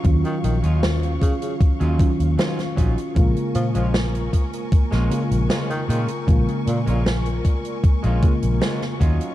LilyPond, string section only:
\new Staff \with { instrumentName = "String section" } { \time 4/4 \key bes \phrygian \tempo 4 = 77 << { des'''1 | des'''1~ | des'''1 | } \\ { <ges f''>1 | <bes' aes''>1~ | <bes' aes''>2.~ <bes' aes''>8 <ges f''>8 | } >> }